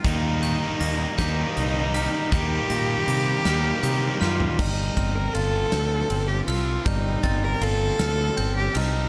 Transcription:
<<
  \new Staff \with { instrumentName = "Glockenspiel" } { \time 6/8 \key f \mixolydian \tempo 4. = 53 r8 g'''8 bes'''8 g'''4 f'''8 | g'''8 bes'''4 f'''8 g'''8 f'''8 | r8 f'''8 a'''8 g'''4 f'''8 | g'''8 a'''4 f'''8 g'''8 f'''8 | }
  \new Staff \with { instrumentName = "Cello" } { \time 6/8 \key f \mixolydian ees'4. ees'4. | g'2~ g'8 f'8 | ees'8. bes'16 a'4~ a'16 g'16 f'8 | ees'8. bes'16 a'4~ a'16 g'16 ees'8 | }
  \new Staff \with { instrumentName = "Clean electric guitar" } { \time 6/8 \key f \mixolydian ees8 ees8 bes8 g'8 ees'8 g'8 | ees8 ees8 bes8 g'8 ees'8 g'8 | g8 c'8 f'8 a'8 c'8 a'8 | g8 c'8 f'8 a'8 c'8 a'8 | }
  \new Staff \with { instrumentName = "Distorted electric guitar" } { \clef bass \time 6/8 \key f \mixolydian <ees g bes ees'>4. <ees g bes ees'>4. | <ees g bes ees'>4. <ees g bes ees'>4. | r2. | r2. | }
  \new Staff \with { instrumentName = "Fingered electric bass" } { \clef bass \time 6/8 \key f \mixolydian ees,4 ees,8 ees,8 c,4 | ees,8 bes,8 c8 ees,8 c8 fis,8 | g,,8 g,,8 g,,8 d,8 g,,8 c,8 | g,,8 g,,8 g,,8 d,8 g,,8 c,8 | }
  \new DrumStaff \with { instrumentName = "Drums" } \drummode { \time 6/8 <hh bd>8 hh8 hh8 <hh bd sn>8 hh8 hh8 | <hh bd>8 hh8 hh8 <hh sn>8 hh8 sn16 tomfh16 | <cymc bd>8 <bd cymr>8 cymr8 <cymr sn>8 cymr8 cymr8 | <bd cymr>8 <bd cymr>8 cymr8 <cymr sn>8 cymr8 cymr8 | }
>>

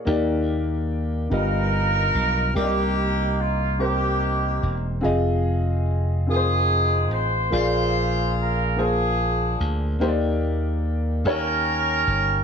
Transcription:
<<
  \new Staff \with { instrumentName = "Grand piano" } { \time 6/8 \key ees \major \tempo 4. = 48 <bes ees' g' d''>4~ <bes ees' g' d''>16 r16 <b f' g' dis''>4~ <b f' g' dis''>16 r16 | <c' g' bes' d'' ees''>4~ <c' g' bes' d'' ees''>16 r16 <c' g' bes' c''>4~ <c' g' bes' c''>16 r16 | <c' f' aes' ees''>4~ <c' f' aes' ees''>16 r16 <c' f' aes' bes' c''>4~ <c' f' aes' bes' c''>16 r16 | <bes f' aes' d''>4~ <bes f' aes' d''>16 r16 <bes f' aes' c''>4~ <bes f' aes' c''>16 r16 |
<bes ees' g' c'' d''>4~ <bes ees' g' c'' d''>16 r16 <bes ees' g' des''>4~ <bes ees' g' des''>16 r16 | }
  \new Staff \with { instrumentName = "Grand piano" } { \clef bass \time 6/8 \key ees \major ees4. g,4. | c4. r4. | r2. | bes,4. r4. |
ees4. ees4. | }
  \new Staff \with { instrumentName = "Horn section" } { \time 6/8 \key ees \major << { r4. ais'4. | g'4 f'8 g'4 r8 | r4. aes'4 c''8 | c''4 bes'8 aes'4 r8 |
r4. bes'4. | } \\ { r4. <dis' f'>4. | <bes ees'>4. <bes ees'>4. | r4. <c' ees'>4. | <f' aes'>4. <d' f'>4. |
r4. <des' g'>4. | } >> }
  \new Staff \with { instrumentName = "Slap bass" } { \clef bass \time 6/8 \key ees \major ees,4. g,,4 b,,8 | c,2~ c,8 fes,,8 | f,,2~ f,,8 a,,8 | bes,,2~ bes,,8 d,8 |
ees,4. ees,4 g,,8 | }
>>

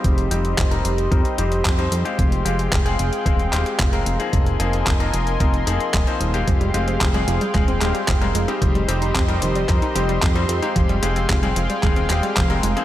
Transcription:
<<
  \new Staff \with { instrumentName = "Analog synth pad" } { \time 4/4 \key f \minor \tempo 4 = 112 << { c'''1~ | c'''1 | c'''1 | c'''1~ |
c'''1~ | c'''1 | } \\ { <g' c'' ees''>1 | <aes' f'' g''>1 | <bes' ees'' aes''>1 | <aes' f'' g''>1 |
<g' c'' ees''>1 | <aes' f'' g''>1 | } >> }
  \new Staff \with { instrumentName = "Grand piano" } { \time 4/4 \key f \minor <g c' ees' g'>8 <g c' ees' g'>8 r16 <g c' ees' bes'>8. <g c' ees' bes'>8 <g c' ees' g'>8 r16 <g c' ees' c''>8 <aes c' f' g'>16~ | <aes c' f' g'>8 <aes c' f' g'>8 r16 <aes c' f' aes'>8. <aes c' f' aes'>8 <aes c' f' g'>8 r16 <aes c' f' bes'>8 <f bes c' ees' aes'>16~ | <f bes c' ees' aes'>8 <f bes c' ees' aes'>8 r16 <f bes c' ees' bes'>8. <f bes c' ees' bes'>8 <f bes c' ees' aes'>8 r16 <f bes c' ees' c''>8 <aes c' f' g'>16~ | <aes c' f' g'>8 <aes c' f' g'>8 r16 <aes c' f' aes'>8. <aes c' f' aes'>8 <aes c' f' g'>8 r16 <aes c' f' bes'>8 <g c' ees' g'>16~ |
<g c' ees' g'>8 <g c' ees' g'>8 r16 <g c' ees' bes'>8. <g c' ees' bes'>8 <g c' ees' g'>8 r16 <g c' ees' c''>8 <aes c' f' g'>16~ | <aes c' f' g'>8 <aes c' f' g'>8 r16 <aes c' f' aes'>8. <aes c' f' aes'>8 <aes c' f' g'>8 r16 <aes c' f' bes'>8 <f bes c' ees' aes'>16 | }
  \new Staff \with { instrumentName = "Synth arpeggio sound" } { \clef bass \time 4/4 \key f \minor r1 | r1 | r1 | f16 g16 aes16 c'16 aes16 g16 f16 g16 aes16 c'16 aes16 g16 f16 g16 aes16 c'16 |
ees16 g16 c'16 ees'16 c'16 g16 ees16 g16 c'16 ees'16 c'16 g16 ees16 g16 c'16 ees'16 | f16 g16 aes16 c'16 aes16 g16 f16 g16 aes16 c'16 aes16 g16 f16 g16 aes16 c'16 | }
  \new Staff \with { instrumentName = "Analog synth bass" } { \clef bass \time 4/4 \key f \minor f,,8 f,,8 f,,8 f,,8 f,8 f,,8 f,8 f,8 | f,,8 f,,8 f,,8 f,,8 ees,,8 ees,,8 f,,8 f,,8 | f,,8 f,,8 f,,8 f,,8 f,,8 f,,8 ees,,8 ees,,8 | f,,8 f,,8 f,,8 f,,8 ees,,8 ees,,8 f,,8 f,,8 |
f,,8 f,,8 f,,8 f,,8 f,8 f,,8 f,8 f,8 | f,,8 f,,8 f,,8 f,,8 ees,,8 ees,,8 f,,8 f,,8 | }
  \new DrumStaff \with { instrumentName = "Drums" } \drummode { \time 4/4 <hh bd>16 hh16 hh16 hh16 <hc hh bd>16 hh16 hh16 hh16 <hh bd>16 hh16 hh16 hh16 <hc hh bd>16 hh16 hh16 hh16 | <hh bd>16 hh16 hh16 hh16 <hc hh bd>16 hh16 hh16 hh16 <hh bd>16 hh16 <hc hh>16 hh16 <hc hh bd>16 hh16 hh16 hh16 | <hh bd>16 hh16 hh16 hh16 <hc hh bd>16 hh16 hh16 hh16 <hh bd>16 hh16 hh16 hh16 <hc hh bd>16 hh16 hh16 hh16 | <hh bd>16 hh16 hh16 hh16 <hc hh bd>16 hh16 hh16 hh16 <hc hh bd>16 hh16 <hc hh>16 hh16 <hc hh bd>16 hh16 hh16 hh16 |
<hh bd>16 hh16 hh16 hh16 <hc hh bd>16 hh16 hh16 hh16 <hc hh bd>16 hh16 hh16 hh16 <hc hh bd>16 hh16 hh16 hh16 | <hh bd>16 hh16 hh16 hh16 <hc hh bd>16 hh16 hh16 hh16 <hc hh bd>16 hh16 <hc hh>16 hh16 <hc hh bd>16 hh16 hh16 hh16 | }
>>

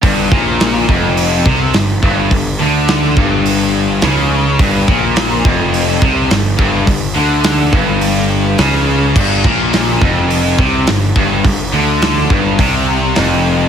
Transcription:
<<
  \new Staff \with { instrumentName = "Distorted electric guitar" } { \clef bass \time 4/4 \key c \mixolydian \tempo 4 = 105 g,8 bes,4 f,4 c8 g,8 g,8 | g,8 d4 g,4. cis4 | g,8 bes,4 f,4 c8 g,8 g,8 | g,8 d4 g,4. cis4 |
g,8 bes,4 f,4 c8 g,8 g,8 | g,8 d4 g,8 c4 f,4 | }
  \new Staff \with { instrumentName = "Overdriven electric guitar" } { \clef bass \time 4/4 \key c \mixolydian g,8 bes,4 f,4 c8 g,8 g,8 | g,8 d4 g,4. cis4 | g,8 bes,4 f,4 c8 g,8 g,8 | g,8 d4 g,4. cis4 |
g,8 bes,4 f,4 c8 g,8 g,8 | g,8 d4 g,8 c4 f,4 | }
  \new Staff \with { instrumentName = "Overdriven electric guitar" } { \clef bass \time 4/4 \key c \mixolydian g,8 bes,4 f,4 c8 g,8 g,8 | g,8 d4 g,4. cis4 | g,8 bes,4 f,4 c8 g,8 g,8 | g,8 d4 g,4. cis4 |
g,8 bes,4 f,4 c8 g,8 g,8 | g,8 d4 g,8 c4 f,4 | }
  \new Staff \with { instrumentName = "Picked electric bass" } { \clef bass \time 4/4 \key c \mixolydian g,,8 bes,,4 f,,4 c,8 g,,8 g,,8 | g,,8 d,4 g,,4. cis,4 | g,,8 bes,,4 f,,4 c,8 g,,8 g,,8 | g,,8 d,4 g,,4. cis,4 |
g,,8 bes,,4 f,,4 c,8 g,,8 g,,8 | g,,8 d,4 g,,8 c,4 f,,4 | }
  \new DrumStaff \with { instrumentName = "Drums" } \drummode { \time 4/4 <hho bd>8 bd8 <hho sn>8 bd8 hho8 bd8 <hho sn>8 bd8 | <hho bd>4 <hho sn>8 bd8 hho4 <hho sn>4 | <hho bd>8 bd8 <hho sn>8 bd8 hho8 bd8 <hho sn>8 bd8 | <hho bd>4 <hho sn>8 bd8 hho4 <hho sn>4 |
<cymc bd>8 bd8 <hho sn>8 bd8 hho8 bd8 <hho sn>8 bd8 | <hho bd>4 <hho sn>8 bd8 <hho bd>4 <hho sn>4 | }
>>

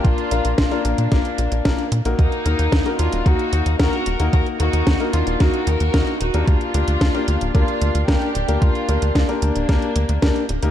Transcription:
<<
  \new Staff \with { instrumentName = "Grand piano" } { \time 4/4 \key ees \lydian \tempo 4 = 112 <bes d' f' bes'>8 <bes d' f' bes'>8. <bes d' f' bes'>8. <bes d' f' bes'>4 <bes d' f' bes'>16 r8 <bes ees' ges' bes'>16~ | <bes ees' ges' bes'>8 <bes ees' ges' bes'>8. <bes ees' ges' bes'>8. <bes ees' ges' bes'>4 <bes ees' ges' bes'>16 r8 <bes ees' ges' bes'>16~ | <bes ees' ges' bes'>8 <bes ees' ges' bes'>8. <bes ees' ges' bes'>8. <bes ees' ges' bes'>4 <bes ees' ges' bes'>16 r8 <bes d' g' bes'>16~ | <bes d' g' bes'>8 <bes d' g' bes'>8. <bes d' g' bes'>8. <bes d' g' bes'>4 <bes d' g' bes'>16 r8 <bes d' g' bes'>16~ |
<bes d' g' bes'>8 <bes d' g' bes'>8. <bes d' g' bes'>8. <bes d' g' bes'>4 <bes d' g' bes'>16 r8 <bes ees' g' bes'>16 | }
  \new Staff \with { instrumentName = "Violin section" } { \time 4/4 \key ees \lydian <d' f'>4 <d' f'>8 <bes d'>2 r8 | <bes ees'>4. <d' f'>8 <ees' ges'>4 <ges' bes'>4 | <ges' bes'>8 <ees' ges'>4 <d' f'>8 <ees' ges'>8 <ges' bes'>4 <ees' ges'>8 | <d' f'>2 <d' f'>4 <d' g'>4 |
<d' f'>4 <d' f'>8 <bes d'>2 r8 | }
  \new Staff \with { instrumentName = "Analog synth bass" } { \clef bass \time 4/4 \key ees \lydian bes,,16 r16 bes,,16 bes,,16 bes,,16 r16 bes,,16 bes,16 bes,,16 r16 bes,,16 bes,,16 bes,,16 r16 bes,16 bes,,16 | ees,16 r16 ees,16 ees,16 ees,16 r16 ees,16 ees,,16 ees,16 r16 ees,16 ees,16 ees,16 r16 ees,,16 ees,16 | ees,16 r16 ees,16 ees,16 ees,16 r16 ees,16 ees,,16 ees,16 r16 ees,16 ees,16 ees,16 r16 ees,,16 ees,16 | d,16 r16 d,16 d,16 d,16 r16 d,16 d,,16 d,16 r16 d,16 d,16 d,16 r16 d,,16 d,16 |
d,16 r16 d,16 d,16 d,16 r16 d,16 d,,16 d,16 r16 d,16 d,16 d,16 r16 d,,16 d,16 | }
  \new DrumStaff \with { instrumentName = "Drums" } \drummode { \time 4/4 <hh bd>16 hh16 hh16 hh16 <hh bd sn>16 hh16 hh16 hh16 <hh bd sn>16 hh16 hh16 hh16 <hh bd sn>16 hh16 hh16 hh16 | <hh bd>16 hh16 hh16 hh16 <hh bd sn>16 hh16 hh16 hh16 <hh bd>16 hh16 hh16 hh16 <hh bd sn>16 hh16 hh16 hh16 | <hh bd>16 hh16 hh16 hh16 <hh bd sn>16 hh16 hh16 hh16 <hh bd sn>16 hh16 hh16 hh16 <hh bd sn>16 hh16 hh16 hh16 | <hh bd>16 hh16 hh16 hh16 <hh bd sn>16 hh16 hh16 hh16 <hh bd>16 hh16 hh16 hh16 <hh bd sn>16 hh16 hh16 hh16 |
<hh bd>16 hh16 hh16 hh16 <hh bd sn>16 hh16 hh16 hh16 <hh bd sn>16 hh16 hh16 hh16 <hh bd sn>16 hh16 hh16 hh16 | }
>>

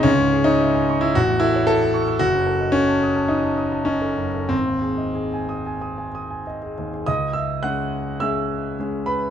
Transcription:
\new Staff \with { instrumentName = "Grand piano" } { \time 4/4 \key cis \minor \tempo 4 = 106 << { cis'8. dis'4 e'16 fis'8 e'8 a'4 | fis'4 cis'4 dis'4 cis'4 | bis2. r4 | <dis'' dis'''>8 <e'' e'''>8 <fis'' fis'''>4 <e'' e'''>4. <b' b''>8 | } \\ { cis,16 gis,16 gis'16 cis''16 e''16 gis''16 cis'''16 e'''16 a,,16 e,16 a'16 cis''16 e''16 a''16 cis'''16 e'''16 | fis,,16 fis,16 a'16 dis''16 a'16 a''16 dis'''16 a''16 dis'''16 a''16 dis'''16 a''16 dis''16 a'16 fis,16 a'16 | gis,,16 dis,16 gis'16 dis''16 gis'16 gis''16 dis'''16 gis''16 dis'''16 gis''16 dis'''16 gis''16 dis''16 gis'16 dis,16 gis'16 | cis,4 <gis cis' gis'>4 <gis cis' gis'>4 <gis cis' gis'>4 | } >> }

